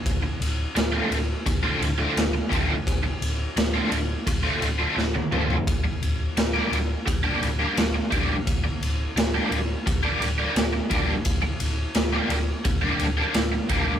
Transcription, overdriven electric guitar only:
X:1
M:4/4
L:1/16
Q:1/4=86
K:Gdor
V:1 name="Overdriven electric guitar"
z4 z [D,A,CF] z3 [D,A,CF] z [D,A,CF] z2 [D,A,CF] z | z4 z [D,A,CF] z3 [D,A,CF] z [D,A,CF] z2 [D,A,CF] z | z4 z [G,B,DG] z3 [G,B,DG] z [G,B,DG] z2 [G,B,DG] z | z4 z [G,B,DG] z3 [G,B,DG] z [G,B,DG] z2 [G,B,DG] z |
z4 z [G,B,DG] z3 [G,B,DG] z [G,B,DG] z2 [G,B,DG] z |]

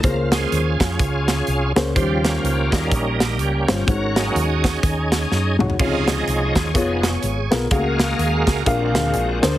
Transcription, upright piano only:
X:1
M:4/4
L:1/8
Q:"Swing" 1/4=125
K:Db
V:1 name="Upright piano"
[B,DAc]3 z4 [B,DAc] | [=G,DFc]3 z4 [G,DFc] | [A,EGcd]3 z4 [A,EGd] | [C,EFd]3 z [_CFAd]2 z [CFAB] |
[=A,B,G_Af]3 z [=DABf]2 z [DABc] |]
V:2 name="Upright piano" clef=bass
D,3 z4 z | E,3 z4 z | A,,3 z4 z | D,3 z4 z |
D,3 z B,,3 z |]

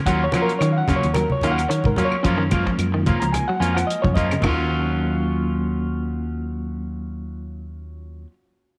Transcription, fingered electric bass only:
X:1
M:4/4
L:1/16
Q:"Swing 16ths" 1/4=110
K:Ebm
V:1 name="Fingered electric bass" clef=bass
E,,2 z2 E,2 z E,,2 z E,,2 z A,, z2 | G,,4 G,,3 D,,2 z F,,2 z G,,3 | E,,16- | E,,16 |]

